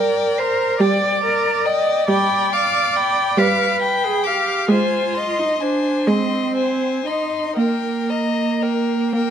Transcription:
Already playing: G3 A#4 D5 G5
0.38 A#4 C5 A#5
0.80 G3 D5 G5
1.24 A#4 A#5
1.65 D5 D#5 G5
2.09 G3 D5 G5 B5
2.53 F5 D6
2.96 G5 B5
3.37 G3 B4 F5 D6
3.80 G5 B5
4.04 G#4
4.23 G4 F5 D6
4.69 G#3 F4 C5 G#5
5.15 D#5 C6
5.39 D#4
5.60 D4 C5 G#5
6.07 G#3 C4 D#5 C6
6.56 C5 G#5
7.06 D#4 D#5 C6
7.57 A#3 A#4 G5
8.10 D#5 A#5
8.62 A#4 G5
9.13 A#3 A#4 G5

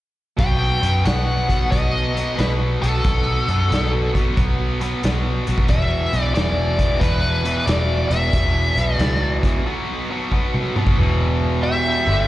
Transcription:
0.37 B1 B2 F#3 B3 G5, kick, closed hi-hat
0.81 F#2 B2 F#3 B3, closed hi-hat
1.05 B1 B2 F#3 B3 F#5, snare, closed hi-hat
1.48 B2 F#3 B3, kick, closed hi-hat
1.71 B1 B2 F#3 B3 D#5, kick, closed hi-hat
2.14 B2 F#3 B3, closed hi-hat
2.36 B1 B2 F#3 B3 B4, closed hi-hat
2.40 snare
2.81 B1 B2 F#3 B3 A4, closed hi-hat
3.04 B1 B2 F#3 B3, kick, closed hi-hat
3.48 F#2 B2 F#3 B3, closed hi-hat
3.71 B1 B2 F#3 B3, snare, closed hi-hat
4.13 B2 F#3 B3, kick, closed hi-hat
4.37 B1 B2 F#3 B3, kick, closed hi-hat
4.80 B2 F#3 B3, closed hi-hat
5.03 B1 B2 F#3 B3, snare, closed hi-hat
5.47 B1 B2 F#3 B3, closed hi-hat
5.58 kick
5.68 E1 E2 B2 E3 E5, kick, closed hi-hat
6.13 B1 E2 B2 E3, closed hi-hat
6.21 D5
6.34 E1 E2 B2 E3 D5, snare, closed hi-hat
6.78 E2 B2 E3, kick, closed hi-hat
7.00 E1 E2 B2 E3 B4, kick, closed hi-hat
7.45 E2 B2 E3, closed hi-hat
7.66 E1 E2 B2 E3 D5, snare, closed hi-hat
8.09 E1 E2 B2 E3 E5, closed hi-hat
8.33 E1 E2 B2 E3, kick, closed hi-hat
8.76 B1 E2 B2 E3, closed hi-hat
8.97 C#2 E2 B2 D5, closed hi-hat
9.01 E3, snare
9.43 E2 B2 E3, kick, closed hi-hat
9.65 B2 F#3 B3
10.10 B2 F#3 B3
10.32 B2 F#3 B3, kick
10.54 mid tom
10.76 B2 F#3 B3, mid tom
10.87 kick
10.97 E1 E2 B2 E3
11.63 G4 E5
12.07 G1 G2 D3 G3

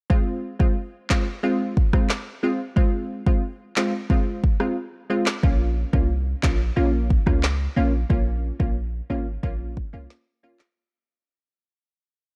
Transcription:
0.10 G#3 C4 F4, kick
0.59 G#3 C4 F4, kick
1.10 G#3 C4 F4, kick, snare, clap
1.43 G#3 C4 F4
1.77 kick
1.93 G#3 C4 F4, kick, cross-stick
2.10 snare, clap
2.43 G#3 C4 F4
2.76 G#3 C4 F4, kick
3.27 G#3 C4 F4, kick
3.76 G#3 C4 F4, snare, clap
4.10 G#3 C4 F4, kick
4.44 kick
4.60 G#3 C4 F4, cross-stick
5.10 G#3 C4 F4
5.26 snare, clap
5.43 A#1 A#3 C#4 F4, kick
5.93 C2 A#3 C#4 F4, kick
6.43 A#1 A#3 C#4 F4, kick, snare, clap
6.76 A#1 A#3 C#4 F4
7.10 kick
7.26 C#2 A#3 C#4 F4, kick, cross-stick
7.43 snare, clap
7.76 A#1 A#3 C#4 F4
8.10 A#1 A#3 C#4 F4, kick
8.60 A#1 A#3 C#4 F4, kick
9.10 G#1 A#3 C#4 F4
9.43 A#1 A#3 C#4 F4, kick
9.77 kick
9.93 C2 A#3 C#4 F4
10.10 snare
10.43 A#3 C#4 F4
10.59 snare, clap

